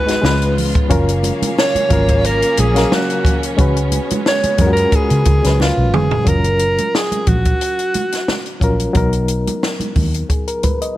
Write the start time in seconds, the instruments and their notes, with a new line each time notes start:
Already playing: fingered electric bass G#1, string section D#3 F#3 G#3 B3 C#4, reed electric piano G#3 D#4 F#4 B4, alto saxophone B4
0.06 reed electric piano G#3 D#4 F#4 B4, snare, closed hi-hat
0.21 fingered electric bass C#2, string section C#3 F3 F4, reed electric piano G#3 C#4 F4 B4, snare, muted conga, high conga
0.42 closed hi-hat
0.58 open hi-hat, low conga
0.75 kick, closed hi-hat
0.88 fingered electric bass F#1, reed electric piano F#3 C#4 F4 A#4, string section F#3 A#3 C#4 F5, kick, closed hi-hat, low conga
1.09 closed hi-hat
1.23 closed hi-hat, high conga
1.42 closed hi-hat, high conga
1.58 alto saxophone C#5, snare, muted conga
1.75 muted fingered electric bass stroke, closed hi-hat, high conga
1.89 fingered electric bass G#1, reed electric piano F#3 C#4 F4, kick, closed hi-hat, muted conga, high conga, low conga
1.93 reed electric piano A#4
2.08 kick, closed hi-hat
2.24 alto saxophone A#4, closed hi-hat
2.42 closed hi-hat
2.57 fingered electric bass A#1, alto saxophone G#4, closed hi-hat, muted conga, high conga
2.74 reed electric piano F#3 C#4 A#4 F5, snare, closed hi-hat
2.92 alto saxophone F#4, snare, high conga
3.10 closed hi-hat
3.25 kick, closed hi-hat, muted conga, low conga
3.43 closed hi-hat
3.57 fingered electric bass C#2, reed electric piano G#3 C#4 F#4, string section G#3 B3, kick, closed hi-hat, low conga
3.61 reed electric piano B4
3.76 closed hi-hat
3.92 closed hi-hat, muted conga, high conga
4.10 closed hi-hat, high conga
4.26 alto saxophone C#5, snare, muted conga
4.43 muted fingered electric bass stroke, closed hi-hat, high conga
4.58 fingered electric bass F#2, reed electric piano G#3 C#4 F4 A#4, kick, closed hi-hat, muted conga, high conga, low conga
4.67 reed electric piano F#4
4.73 alto saxophone A#4, closed hi-hat
4.92 alto saxophone G#4, kick, closed hi-hat
5.10 fingered electric bass C#3, closed hi-hat
5.25 fingered electric bass C#2, kick, closed hi-hat, high conga
5.42 fingered electric bass C#2, reed electric piano F#3 G#3 C#4, snare, closed hi-hat
5.46 reed electric piano B4
5.60 alto saxophone F4, snare, muted conga, high conga
5.78 fingered electric bass B1
5.93 fingered electric bass F1, alto saxophone G#4, mid tom, muted conga, low conga
6.11 floor tom
6.25 fingered electric bass F#1, reed electric piano F#3 C#4 F4, alto saxophone A#4, kick, closed hi-hat, muted conga, low conga
6.29 reed electric piano A#4
6.44 closed hi-hat
6.59 closed hi-hat
6.78 closed hi-hat, high conga
6.95 alto saxophone G#4, snare
7.12 closed hi-hat, high conga
7.27 fingered electric bass A#1, alto saxophone F#4, kick, closed hi-hat, high conga, low conga
7.45 kick, closed hi-hat
7.61 closed hi-hat
7.79 closed hi-hat
7.94 closed hi-hat, muted conga, high conga
8.12 snare, closed hi-hat
8.28 snare, high conga
8.46 closed hi-hat
8.60 fingered electric bass A#1, reed electric piano F#3 C#4 F4 A#4, kick, closed hi-hat, muted conga
8.80 closed hi-hat
8.93 fingered electric bass B1, reed electric piano F#3 B3 D#4 A#4, kick, closed hi-hat, muted conga, low conga
9.13 closed hi-hat
9.28 closed hi-hat
9.47 closed hi-hat, high conga
9.63 snare, muted conga
9.80 closed hi-hat, high conga
9.96 fingered electric bass D#2, kick, open hi-hat, high conga, low conga
10.14 closed hi-hat
10.29 reed electric piano G#4, kick, closed hi-hat, muted conga
10.48 reed electric piano A#4, closed hi-hat
10.63 reed electric piano B4, kick, closed hi-hat, muted conga, high conga
10.82 reed electric piano D#5, closed hi-hat